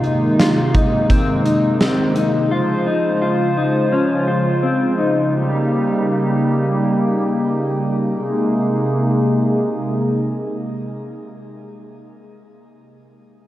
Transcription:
0.00 2.47 C3 medium
0.00 2.47 D#3 medium
0.00 5.29 G#3 medium
0.00 2.47 A#3 medium
0.00 2.47 D#4 medium
0.00 0.39 D#4 medium
0.00 closed hi-hat soft
0.40 0.75 F4 medium
0.40 snare medium
0.40 closed hi-hat medium
0.75 1.10 D#4 medium
0.75 kick medium
0.75 closed hi-hat soft
1.10 1.45 C4 medium
1.10 kick medium
1.10 closed hi-hat medium
1.45 1.80 D#4 medium
1.45 closed hi-hat soft
1.80 2.15 C4 medium
1.80 snare medium
1.80 closed hi-hat medium
2.15 2.51 D#4 medium
2.15 closed hi-hat soft
2.51 8.12 C#3 medium
2.51 5.31 F3 medium
2.51 5.31 F4 medium
2.51 2.86 F4 medium
2.51 5.31 C5 medium
2.87 3.22 D#4 medium
3.22 3.57 F4 medium
3.57 3.92 D#4 medium
3.92 4.28 C#4 medium
4.28 4.63 F4 medium
4.63 4.98 C4 medium
4.98 5.33 D#4 medium
5.33 8.13 G3 medium
5.33 8.13 A#3 medium
5.33 8.13 D#4 medium
5.33 8.13 G4 medium
8.16 11.74 C3 medium
8.16 11.74 G#3 medium
8.16 11.74 A#3 medium
8.16 11.74 D#4 medium
8.16 11.74 G#4 medium

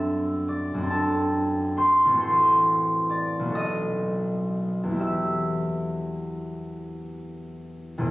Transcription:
0.00 0.73 F#2 medium
0.00 0.77 C4 medium
0.00 0.81 D4 medium
0.00 0.90 A4 medium
0.00 0.48 D5 medium
0.00 2.26 E5 medium
0.00 2.11 F#5 medium
0.00 0.47 D6 medium
0.00 1.08 E6 loud
0.48 2.26 D5 medium
0.48 2.26 D6 medium
0.74 2.17 F#2 medium
0.74 2.08 C4 medium
0.82 2.21 D4 medium
0.90 2.16 A4 medium
0.90 4.80 A5 medium
1.77 2.21 C5 medium
1.77 2.19 C6 loud
2.05 3.51 A1 medium
2.05 3.53 C4 medium
2.13 3.46 F#4 medium
2.13 3.50 A4 medium
2.21 3.60 C5 medium
2.21 3.59 C6 loud
3.09 3.60 D5 medium
3.09 3.88 D6 loud
3.39 4.96 B1 medium
3.43 4.86 B3 medium
3.47 5.00 F#4 medium
3.51 5.02 A4 medium
3.51 5.03 D#6 loud
3.56 5.04 D#5 medium
4.83 7.94 E2 medium
4.88 8.11 B3 soft
4.88 8.11 E4 medium
4.96 8.11 G4 medium
4.96 8.11 E6 medium
5.01 8.11 E5 medium
7.98 8.11 E1 medium
7.98 8.11 E2 medium

